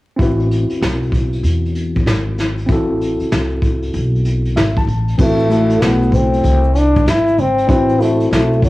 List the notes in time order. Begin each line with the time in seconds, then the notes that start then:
0.16 A1 C4 E4, kick, closed hi-hat
0.20 F#4 B4
0.39 closed hi-hat
0.51 closed hi-hat
0.70 muted upright bass stroke, closed hi-hat
0.81 B1, snare
1.02 closed hi-hat
1.12 kick, closed hi-hat
1.33 closed hi-hat
1.43 E2, closed hi-hat
1.65 closed hi-hat
1.75 closed hi-hat
1.95 kick, closed hi-hat
2.06 G#1, snare
2.38 snare, closed hi-hat
2.58 closed hi-hat
2.66 A1 C4 E4, kick, closed hi-hat
2.71 F#4 A4
3.01 closed hi-hat
3.19 muted upright bass stroke, closed hi-hat
3.31 C2, snare
3.62 kick, closed hi-hat
3.82 closed hi-hat
3.93 B1, closed hi-hat
4.15 closed hi-hat
4.25 closed hi-hat
4.45 closed hi-hat
4.56 G#1 E5, snare
4.77 A5, kick, closed hi-hat
4.87 A1, closed hi-hat
5.08 closed hi-hat
5.18 A1 A3 C4 E4 F#4 B4, kick, crash, shaker
5.39 shaker
5.50 A3 E4 F#4 A4, closed hi-hat, shaker
5.70 closed hi-hat, shaker
5.81 B1 B3, snare, shaker
6.02 closed hi-hat, shaker
6.12 C4, kick, closed hi-hat, low conga, shaker
6.33 closed hi-hat, shaker
6.44 C2, closed hi-hat, low conga, shaker
6.64 shaker
6.75 D4, closed hi-hat, shaker
6.95 kick, closed hi-hat, high conga, shaker
7.06 G#1 E4, snare, shaker
7.28 closed hi-hat, shaker
7.38 C4, closed hi-hat, high conga, low conga, shaker
7.58 closed hi-hat, shaker
7.67 A1 C4 D4 E4 F#4 B4, kick, closed hi-hat, shaker
7.89 closed hi-hat, shaker
7.99 A3 C4 E4 F#4 C5, closed hi-hat, shaker
8.20 closed hi-hat, shaker
8.31 B1 A3, snare, shaker
8.53 closed hi-hat, shaker
8.62 F#3, kick, closed hi-hat, low conga, shaker